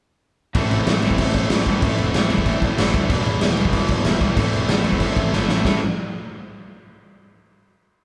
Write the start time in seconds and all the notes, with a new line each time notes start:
0.55 A1 A2 E3 A3 C4 E4, kick, crash
0.71 A1, crash
0.87 A1 A2 E3 A3 C4 E4, snare, crash
1.02 A1 A2 E3 A3 C4 E4, crash
1.11 kick
1.18 A1 A2 E3 A3 C4 E4, kick, crash
1.34 kick, crash
1.50 A1 A2 E3 A3 C4 E4, snare, crash
1.66 A1 A2 E3 A3 C4 E4, kick, crash
1.82 A1 A2 E3 A3 C4 E4, kick, crash
1.98 E1, crash
2.14 A1 A2 E3 A3 C4 E4, snare, crash
2.29 E2 A2 E3 A3 C4 E4, crash
2.38 kick
2.45 A1 A2 E3 A3 C4 E4, kick, crash
2.61 A1, kick, crash
2.76 G1 A2 E3 A3 C4 E4, snare, crash
2.93 D2 A2 E3 A3 C4 E4, kick, crash
3.09 E1 E2 B2 E3 G3 B3 E4, kick, crash
3.25 E1, crash
3.41 E1 E2 B2 E3 G3 B3 E4, snare, crash
3.57 E1 E2 B2 E3 G3 B3 E4, crash
3.65 kick
3.72 E1 E2 B2 E3 G3 B3 E4, kick, crash
3.88 kick, crash
4.04 E1 E2 B2 E3 G3 B3 E4, snare, crash
4.21 B1 E2 B2 E3 G3 B3 E4, kick, crash
4.37 A1 A2 E3 A3 C4 E4, kick, crash
4.52 E1, crash
4.69 A1 A2 E3 A3 C4 E4, snare, crash
4.84 E2 A2 E3 A3 C4 E4, crash
4.92 kick
5.00 A1 A2 E3 A3 C4 E4, kick, crash
5.16 A1, kick, crash
5.32 G1 A2 E3 A3 C4 E4, snare
5.49 A1 A2 E3 A3 C4 E4, snare
5.65 A1 A2 E3 A3 C4 E4 A4, kick, snare